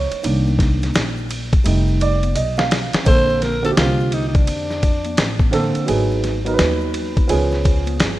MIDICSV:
0, 0, Header, 1, 6, 480
1, 0, Start_track
1, 0, Tempo, 705882
1, 163, Time_signature, 4, 2, 24, 8
1, 5571, End_track
2, 0, Start_track
2, 0, Title_t, "Alto saxophone"
2, 0, Program_c, 0, 65
2, 2091, Note_on_c, 0, 72, 110
2, 2329, Note_on_c, 0, 70, 96
2, 2339, Note_off_c, 0, 72, 0
2, 2479, Note_off_c, 0, 70, 0
2, 2484, Note_on_c, 0, 69, 83
2, 2521, Note_off_c, 0, 69, 0
2, 2571, Note_on_c, 0, 65, 93
2, 2814, Note_on_c, 0, 63, 81
2, 2824, Note_off_c, 0, 65, 0
2, 2901, Note_off_c, 0, 63, 0
2, 2909, Note_on_c, 0, 63, 57
2, 2960, Note_on_c, 0, 62, 77
2, 2970, Note_off_c, 0, 63, 0
2, 3765, Note_off_c, 0, 62, 0
2, 5571, End_track
3, 0, Start_track
3, 0, Title_t, "Grand piano"
3, 0, Program_c, 1, 0
3, 0, Note_on_c, 1, 56, 59
3, 0, Note_on_c, 1, 58, 51
3, 0, Note_on_c, 1, 63, 67
3, 0, Note_on_c, 1, 73, 83
3, 130, Note_off_c, 1, 56, 0
3, 132, Note_off_c, 1, 58, 0
3, 134, Note_off_c, 1, 63, 0
3, 150, Note_off_c, 1, 73, 0
3, 157, Note_on_c, 1, 51, 58
3, 160, Note_on_c, 1, 58, 54
3, 166, Note_on_c, 1, 62, 64
3, 853, Note_off_c, 1, 51, 0
3, 854, Note_off_c, 1, 58, 0
3, 857, Note_off_c, 1, 62, 0
3, 1115, Note_on_c, 1, 55, 64
3, 1122, Note_on_c, 1, 57, 59
3, 1125, Note_on_c, 1, 63, 70
3, 1373, Note_on_c, 1, 74, 90
3, 1463, Note_off_c, 1, 55, 0
3, 1467, Note_off_c, 1, 57, 0
3, 1468, Note_off_c, 1, 63, 0
3, 1601, Note_on_c, 1, 75, 93
3, 1615, Note_off_c, 1, 74, 0
3, 1754, Note_on_c, 1, 77, 92
3, 1760, Note_off_c, 1, 75, 0
3, 1978, Note_off_c, 1, 77, 0
3, 2067, Note_on_c, 1, 50, 65
3, 2074, Note_on_c, 1, 58, 64
3, 2079, Note_on_c, 1, 60, 60
3, 2088, Note_on_c, 1, 69, 75
3, 2390, Note_off_c, 1, 50, 0
3, 2394, Note_off_c, 1, 58, 0
3, 2396, Note_off_c, 1, 60, 0
3, 2400, Note_off_c, 1, 69, 0
3, 2462, Note_on_c, 1, 50, 68
3, 2467, Note_on_c, 1, 58, 66
3, 2477, Note_on_c, 1, 60, 65
3, 2480, Note_on_c, 1, 66, 63
3, 2510, Note_off_c, 1, 66, 0
3, 2523, Note_on_c, 1, 67, 71
3, 3245, Note_off_c, 1, 50, 0
3, 3247, Note_off_c, 1, 58, 0
3, 3252, Note_off_c, 1, 60, 0
3, 3275, Note_off_c, 1, 67, 0
3, 3747, Note_on_c, 1, 50, 85
3, 3754, Note_on_c, 1, 58, 72
3, 3757, Note_on_c, 1, 60, 78
3, 3765, Note_on_c, 1, 69, 92
3, 3965, Note_off_c, 1, 50, 0
3, 3969, Note_off_c, 1, 58, 0
3, 3970, Note_off_c, 1, 60, 0
3, 3974, Note_off_c, 1, 69, 0
3, 3983, Note_on_c, 1, 54, 84
3, 3990, Note_on_c, 1, 59, 78
3, 3996, Note_on_c, 1, 63, 73
3, 4000, Note_on_c, 1, 68, 93
3, 4308, Note_off_c, 1, 54, 0
3, 4311, Note_off_c, 1, 59, 0
3, 4314, Note_off_c, 1, 63, 0
3, 4316, Note_off_c, 1, 68, 0
3, 4383, Note_on_c, 1, 54, 81
3, 4387, Note_on_c, 1, 59, 76
3, 4395, Note_on_c, 1, 63, 78
3, 4402, Note_on_c, 1, 70, 78
3, 4431, Note_off_c, 1, 70, 0
3, 4446, Note_on_c, 1, 71, 93
3, 4944, Note_off_c, 1, 59, 0
3, 4947, Note_on_c, 1, 53, 92
3, 4954, Note_on_c, 1, 59, 83
3, 4956, Note_off_c, 1, 54, 0
3, 4961, Note_on_c, 1, 61, 85
3, 4962, Note_off_c, 1, 63, 0
3, 4965, Note_on_c, 1, 68, 96
3, 4988, Note_off_c, 1, 71, 0
3, 5571, Note_off_c, 1, 53, 0
3, 5571, Note_off_c, 1, 59, 0
3, 5571, Note_off_c, 1, 61, 0
3, 5571, Note_off_c, 1, 68, 0
3, 5571, End_track
4, 0, Start_track
4, 0, Title_t, "Upright bass"
4, 0, Program_c, 2, 32
4, 167, Note_on_c, 2, 36, 102
4, 621, Note_off_c, 2, 36, 0
4, 647, Note_on_c, 2, 34, 87
4, 1019, Note_off_c, 2, 34, 0
4, 1128, Note_on_c, 2, 29, 111
4, 1581, Note_off_c, 2, 29, 0
4, 1610, Note_on_c, 2, 35, 94
4, 1980, Note_off_c, 2, 35, 0
4, 2085, Note_on_c, 2, 34, 98
4, 2540, Note_off_c, 2, 34, 0
4, 2565, Note_on_c, 2, 36, 86
4, 3020, Note_off_c, 2, 36, 0
4, 3044, Note_on_c, 2, 41, 93
4, 3499, Note_off_c, 2, 41, 0
4, 3523, Note_on_c, 2, 33, 88
4, 3896, Note_off_c, 2, 33, 0
4, 4005, Note_on_c, 2, 32, 100
4, 4460, Note_off_c, 2, 32, 0
4, 4487, Note_on_c, 2, 39, 92
4, 4941, Note_off_c, 2, 39, 0
4, 4965, Note_on_c, 2, 37, 99
4, 5420, Note_off_c, 2, 37, 0
4, 5446, Note_on_c, 2, 31, 87
4, 5571, Note_off_c, 2, 31, 0
4, 5571, End_track
5, 0, Start_track
5, 0, Title_t, "Muted upright bass strokes"
5, 1040, Note_on_c, 9, 29, 46
5, 1108, Note_off_c, 9, 29, 0
5, 1998, Note_on_c, 9, 29, 49
5, 2066, Note_off_c, 9, 29, 0
5, 3916, Note_on_c, 9, 29, 46
5, 3984, Note_off_c, 9, 29, 0
5, 5571, End_track
6, 0, Start_track
6, 0, Title_t, "Drums"
6, 75, Note_on_c, 9, 82, 49
6, 79, Note_on_c, 9, 51, 47
6, 143, Note_off_c, 9, 82, 0
6, 147, Note_off_c, 9, 51, 0
6, 157, Note_on_c, 9, 82, 70
6, 165, Note_on_c, 9, 51, 68
6, 225, Note_off_c, 9, 82, 0
6, 233, Note_off_c, 9, 51, 0
6, 319, Note_on_c, 9, 63, 55
6, 319, Note_on_c, 9, 82, 43
6, 387, Note_off_c, 9, 63, 0
6, 387, Note_off_c, 9, 82, 0
6, 400, Note_on_c, 9, 36, 90
6, 404, Note_on_c, 9, 63, 48
6, 404, Note_on_c, 9, 64, 65
6, 404, Note_on_c, 9, 82, 51
6, 408, Note_on_c, 9, 51, 53
6, 414, Note_on_c, 9, 38, 33
6, 468, Note_off_c, 9, 36, 0
6, 472, Note_off_c, 9, 63, 0
6, 472, Note_off_c, 9, 64, 0
6, 472, Note_off_c, 9, 82, 0
6, 476, Note_off_c, 9, 51, 0
6, 482, Note_off_c, 9, 38, 0
6, 557, Note_on_c, 9, 63, 50
6, 557, Note_on_c, 9, 82, 47
6, 565, Note_on_c, 9, 51, 45
6, 568, Note_on_c, 9, 38, 34
6, 625, Note_off_c, 9, 63, 0
6, 625, Note_off_c, 9, 82, 0
6, 633, Note_off_c, 9, 51, 0
6, 636, Note_off_c, 9, 38, 0
6, 638, Note_on_c, 9, 82, 70
6, 649, Note_on_c, 9, 44, 53
6, 649, Note_on_c, 9, 51, 73
6, 650, Note_on_c, 9, 38, 106
6, 706, Note_off_c, 9, 82, 0
6, 717, Note_off_c, 9, 44, 0
6, 717, Note_off_c, 9, 51, 0
6, 718, Note_off_c, 9, 38, 0
6, 797, Note_on_c, 9, 82, 43
6, 865, Note_off_c, 9, 82, 0
6, 878, Note_on_c, 9, 64, 66
6, 878, Note_on_c, 9, 82, 45
6, 888, Note_on_c, 9, 51, 66
6, 946, Note_off_c, 9, 64, 0
6, 946, Note_off_c, 9, 82, 0
6, 956, Note_off_c, 9, 51, 0
6, 1036, Note_on_c, 9, 82, 42
6, 1039, Note_on_c, 9, 36, 105
6, 1040, Note_on_c, 9, 51, 41
6, 1104, Note_off_c, 9, 82, 0
6, 1107, Note_off_c, 9, 36, 0
6, 1108, Note_off_c, 9, 51, 0
6, 1116, Note_on_c, 9, 82, 67
6, 1126, Note_on_c, 9, 51, 75
6, 1184, Note_off_c, 9, 82, 0
6, 1194, Note_off_c, 9, 51, 0
6, 1276, Note_on_c, 9, 82, 45
6, 1344, Note_off_c, 9, 82, 0
6, 1360, Note_on_c, 9, 82, 47
6, 1368, Note_on_c, 9, 51, 60
6, 1428, Note_off_c, 9, 82, 0
6, 1436, Note_off_c, 9, 51, 0
6, 1516, Note_on_c, 9, 63, 79
6, 1516, Note_on_c, 9, 82, 58
6, 1517, Note_on_c, 9, 51, 41
6, 1584, Note_off_c, 9, 63, 0
6, 1584, Note_off_c, 9, 82, 0
6, 1585, Note_off_c, 9, 51, 0
6, 1601, Note_on_c, 9, 44, 54
6, 1601, Note_on_c, 9, 51, 79
6, 1605, Note_on_c, 9, 82, 63
6, 1669, Note_off_c, 9, 44, 0
6, 1669, Note_off_c, 9, 51, 0
6, 1673, Note_off_c, 9, 82, 0
6, 1746, Note_on_c, 9, 63, 72
6, 1746, Note_on_c, 9, 82, 50
6, 1761, Note_on_c, 9, 38, 86
6, 1814, Note_off_c, 9, 63, 0
6, 1814, Note_off_c, 9, 82, 0
6, 1829, Note_off_c, 9, 38, 0
6, 1844, Note_on_c, 9, 64, 71
6, 1844, Note_on_c, 9, 82, 49
6, 1845, Note_on_c, 9, 51, 65
6, 1850, Note_on_c, 9, 38, 103
6, 1912, Note_off_c, 9, 64, 0
6, 1912, Note_off_c, 9, 82, 0
6, 1913, Note_off_c, 9, 51, 0
6, 1918, Note_off_c, 9, 38, 0
6, 1995, Note_on_c, 9, 51, 51
6, 1998, Note_on_c, 9, 82, 52
6, 2002, Note_on_c, 9, 38, 96
6, 2063, Note_off_c, 9, 51, 0
6, 2066, Note_off_c, 9, 82, 0
6, 2070, Note_off_c, 9, 38, 0
6, 2075, Note_on_c, 9, 82, 63
6, 2082, Note_on_c, 9, 51, 66
6, 2084, Note_on_c, 9, 36, 108
6, 2143, Note_off_c, 9, 82, 0
6, 2150, Note_off_c, 9, 51, 0
6, 2152, Note_off_c, 9, 36, 0
6, 2240, Note_on_c, 9, 82, 36
6, 2308, Note_off_c, 9, 82, 0
6, 2325, Note_on_c, 9, 51, 53
6, 2327, Note_on_c, 9, 63, 44
6, 2327, Note_on_c, 9, 82, 45
6, 2331, Note_on_c, 9, 38, 31
6, 2393, Note_off_c, 9, 51, 0
6, 2395, Note_off_c, 9, 63, 0
6, 2395, Note_off_c, 9, 82, 0
6, 2399, Note_off_c, 9, 38, 0
6, 2479, Note_on_c, 9, 51, 42
6, 2481, Note_on_c, 9, 82, 45
6, 2547, Note_off_c, 9, 51, 0
6, 2549, Note_off_c, 9, 82, 0
6, 2565, Note_on_c, 9, 44, 49
6, 2565, Note_on_c, 9, 51, 66
6, 2566, Note_on_c, 9, 38, 106
6, 2566, Note_on_c, 9, 82, 62
6, 2633, Note_off_c, 9, 44, 0
6, 2633, Note_off_c, 9, 51, 0
6, 2634, Note_off_c, 9, 38, 0
6, 2634, Note_off_c, 9, 82, 0
6, 2722, Note_on_c, 9, 82, 41
6, 2790, Note_off_c, 9, 82, 0
6, 2802, Note_on_c, 9, 51, 60
6, 2805, Note_on_c, 9, 64, 58
6, 2805, Note_on_c, 9, 82, 40
6, 2870, Note_off_c, 9, 51, 0
6, 2873, Note_off_c, 9, 64, 0
6, 2873, Note_off_c, 9, 82, 0
6, 2956, Note_on_c, 9, 51, 38
6, 2957, Note_on_c, 9, 36, 98
6, 2962, Note_on_c, 9, 82, 38
6, 3024, Note_off_c, 9, 51, 0
6, 3025, Note_off_c, 9, 36, 0
6, 3030, Note_off_c, 9, 82, 0
6, 3041, Note_on_c, 9, 82, 65
6, 3042, Note_on_c, 9, 51, 67
6, 3109, Note_off_c, 9, 82, 0
6, 3110, Note_off_c, 9, 51, 0
6, 3199, Note_on_c, 9, 38, 30
6, 3200, Note_on_c, 9, 82, 45
6, 3267, Note_off_c, 9, 38, 0
6, 3268, Note_off_c, 9, 82, 0
6, 3283, Note_on_c, 9, 51, 59
6, 3283, Note_on_c, 9, 82, 42
6, 3284, Note_on_c, 9, 36, 84
6, 3351, Note_off_c, 9, 51, 0
6, 3351, Note_off_c, 9, 82, 0
6, 3352, Note_off_c, 9, 36, 0
6, 3431, Note_on_c, 9, 51, 39
6, 3438, Note_on_c, 9, 63, 74
6, 3438, Note_on_c, 9, 82, 52
6, 3499, Note_off_c, 9, 51, 0
6, 3506, Note_off_c, 9, 63, 0
6, 3506, Note_off_c, 9, 82, 0
6, 3518, Note_on_c, 9, 44, 50
6, 3518, Note_on_c, 9, 51, 72
6, 3523, Note_on_c, 9, 38, 109
6, 3528, Note_on_c, 9, 82, 58
6, 3586, Note_off_c, 9, 44, 0
6, 3586, Note_off_c, 9, 51, 0
6, 3591, Note_off_c, 9, 38, 0
6, 3596, Note_off_c, 9, 82, 0
6, 3668, Note_on_c, 9, 36, 91
6, 3668, Note_on_c, 9, 63, 63
6, 3668, Note_on_c, 9, 82, 48
6, 3736, Note_off_c, 9, 36, 0
6, 3736, Note_off_c, 9, 63, 0
6, 3736, Note_off_c, 9, 82, 0
6, 3760, Note_on_c, 9, 51, 63
6, 3765, Note_on_c, 9, 38, 36
6, 3766, Note_on_c, 9, 64, 61
6, 3766, Note_on_c, 9, 82, 41
6, 3828, Note_off_c, 9, 51, 0
6, 3833, Note_off_c, 9, 38, 0
6, 3834, Note_off_c, 9, 64, 0
6, 3834, Note_off_c, 9, 82, 0
6, 3910, Note_on_c, 9, 51, 44
6, 3918, Note_on_c, 9, 82, 49
6, 3978, Note_off_c, 9, 51, 0
6, 3986, Note_off_c, 9, 82, 0
6, 3996, Note_on_c, 9, 82, 64
6, 3999, Note_on_c, 9, 51, 72
6, 4064, Note_off_c, 9, 82, 0
6, 4067, Note_off_c, 9, 51, 0
6, 4157, Note_on_c, 9, 82, 38
6, 4225, Note_off_c, 9, 82, 0
6, 4241, Note_on_c, 9, 51, 48
6, 4244, Note_on_c, 9, 63, 44
6, 4244, Note_on_c, 9, 82, 45
6, 4247, Note_on_c, 9, 38, 30
6, 4309, Note_off_c, 9, 51, 0
6, 4312, Note_off_c, 9, 63, 0
6, 4312, Note_off_c, 9, 82, 0
6, 4315, Note_off_c, 9, 38, 0
6, 4395, Note_on_c, 9, 51, 45
6, 4395, Note_on_c, 9, 82, 43
6, 4463, Note_off_c, 9, 51, 0
6, 4463, Note_off_c, 9, 82, 0
6, 4476, Note_on_c, 9, 82, 63
6, 4480, Note_on_c, 9, 44, 49
6, 4480, Note_on_c, 9, 51, 66
6, 4481, Note_on_c, 9, 38, 102
6, 4544, Note_off_c, 9, 82, 0
6, 4548, Note_off_c, 9, 44, 0
6, 4548, Note_off_c, 9, 51, 0
6, 4549, Note_off_c, 9, 38, 0
6, 4631, Note_on_c, 9, 82, 41
6, 4699, Note_off_c, 9, 82, 0
6, 4716, Note_on_c, 9, 64, 58
6, 4716, Note_on_c, 9, 82, 45
6, 4720, Note_on_c, 9, 51, 60
6, 4784, Note_off_c, 9, 64, 0
6, 4784, Note_off_c, 9, 82, 0
6, 4788, Note_off_c, 9, 51, 0
6, 4871, Note_on_c, 9, 82, 39
6, 4875, Note_on_c, 9, 36, 93
6, 4875, Note_on_c, 9, 51, 38
6, 4939, Note_off_c, 9, 82, 0
6, 4943, Note_off_c, 9, 36, 0
6, 4943, Note_off_c, 9, 51, 0
6, 4954, Note_on_c, 9, 82, 58
6, 4959, Note_on_c, 9, 51, 71
6, 5022, Note_off_c, 9, 82, 0
6, 5027, Note_off_c, 9, 51, 0
6, 5110, Note_on_c, 9, 82, 43
6, 5118, Note_on_c, 9, 38, 30
6, 5178, Note_off_c, 9, 82, 0
6, 5186, Note_off_c, 9, 38, 0
6, 5192, Note_on_c, 9, 82, 46
6, 5203, Note_on_c, 9, 36, 89
6, 5205, Note_on_c, 9, 51, 61
6, 5260, Note_off_c, 9, 82, 0
6, 5271, Note_off_c, 9, 36, 0
6, 5273, Note_off_c, 9, 51, 0
6, 5348, Note_on_c, 9, 63, 73
6, 5348, Note_on_c, 9, 82, 51
6, 5353, Note_on_c, 9, 51, 41
6, 5416, Note_off_c, 9, 63, 0
6, 5416, Note_off_c, 9, 82, 0
6, 5421, Note_off_c, 9, 51, 0
6, 5437, Note_on_c, 9, 44, 51
6, 5437, Note_on_c, 9, 51, 71
6, 5439, Note_on_c, 9, 82, 56
6, 5442, Note_on_c, 9, 38, 111
6, 5505, Note_off_c, 9, 44, 0
6, 5505, Note_off_c, 9, 51, 0
6, 5507, Note_off_c, 9, 82, 0
6, 5510, Note_off_c, 9, 38, 0
6, 5571, End_track
0, 0, End_of_file